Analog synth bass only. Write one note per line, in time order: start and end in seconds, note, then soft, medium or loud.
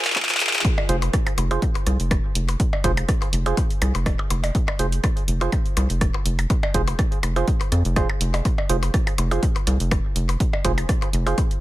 0.89 1.10 F1 loud
1.38 1.58 F1 loud
1.87 1.98 C2 loud
2.00 2.20 F1 medium
2.35 2.56 F1 medium
2.84 3.05 F1 loud
3.33 3.53 F1 loud
3.82 3.93 C2 loud
3.95 4.15 F1 medium
4.30 4.51 F1 medium
4.79 5.00 F1 loud
5.28 5.49 F1 loud
5.77 5.88 C2 loud
5.90 6.10 F1 medium
6.26 6.46 F1 medium
6.74 6.95 F1 loud
7.23 7.44 F1 medium
7.72 7.83 F2 medium
7.85 8.05 F1 loud
8.21 8.41 F1 loud
8.69 8.90 F1 loud
9.18 9.39 F1 loud
9.67 9.78 C2 loud
9.80 10.00 F1 medium
10.16 10.36 F1 medium
10.65 10.85 F1 loud
11.13 11.34 F1 loud